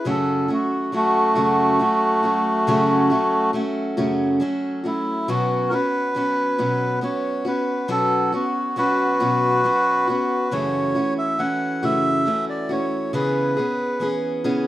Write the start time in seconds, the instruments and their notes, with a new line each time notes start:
0.05 steel-string acoustic guitar F#2 C#3 F#3 A3 C#4 F#4
0.09 melodica A4
0.48 steel-string acoustic guitar F#3 A3 C#4 F#4
0.54 melodica F#4
0.92 steel-string acoustic guitar F#3 A3 C#4 F#4, melodica A3 F#4
1.35 steel-string acoustic guitar F#2 C#3 F#3 A3 C#4 F#4
1.79 steel-string acoustic guitar F#3 A3 C#4 F#4
2.23 steel-string acoustic guitar F#3 A3 C#4 F#4
2.67 steel-string acoustic guitar F#2 C#3 F#3 A3 C#4 F#4
3.10 steel-string acoustic guitar F#3 A3 C#4 F#4
3.53 steel-string acoustic guitar F#3 A3 C#4 F#4
3.97 steel-string acoustic guitar F#2 C#3 F#3 A3 C#4 F#4
4.40 steel-string acoustic guitar F#3 A3 C#4 F#4
4.84 steel-string acoustic guitar F#3 A3 C#4 F#4, melodica E4
5.28 steel-string acoustic guitar B2 F#3 B3 C#4 F#4, melodica F#4
5.70 steel-string acoustic guitar C#4 F#4, melodica A#4
5.74 steel-string acoustic guitar B3, melodica B4
6.15 steel-string acoustic guitar F#3 B3 C#4 F#4
6.58 steel-string acoustic guitar B2 F#3 B3 C#4 F#4
7.01 steel-string acoustic guitar F#3 B3 C#4 F#4, melodica C#5
7.45 steel-string acoustic guitar B3 C#4 F#4, melodica B4
7.88 steel-string acoustic guitar B2 F#3 B3 C#4 F#4, melodica A4
8.32 steel-string acoustic guitar B3 C#4 F#4, melodica F#4
8.76 steel-string acoustic guitar F#3 B3 C#4 F#4, melodica F#4 B4
9.20 steel-string acoustic guitar B2 F#3 B3 C#4 F#4
9.64 steel-string acoustic guitar F#3 B3 C#4 F#4
10.08 steel-string acoustic guitar B3 C#4 F#4, melodica B4
10.51 steel-string acoustic guitar F#2 C#3 E3 A3 C#4 F#4, melodica C#5
10.95 steel-string acoustic guitar E3 A3 C#4 F#4
11.18 melodica E5
11.39 steel-string acoustic guitar E3 A3 C#4 F#4, melodica F#5
11.83 steel-string acoustic guitar F#2 C#3 E3 A3 C#4 F#4, melodica E5
12.25 steel-string acoustic guitar E3 A3 C#4 F#4
12.49 melodica D5
12.69 steel-string acoustic guitar E3 A3 C#4 F#4, melodica C#5
13.13 steel-string acoustic guitar C#3 E3 B3 C#4 G#4, melodica B4
13.57 steel-string acoustic guitar B3 C#4 G#4
14.00 steel-string acoustic guitar E3 B3 C#4 G#4
14.44 steel-string acoustic guitar C#3 E3 B3 C#4 G#4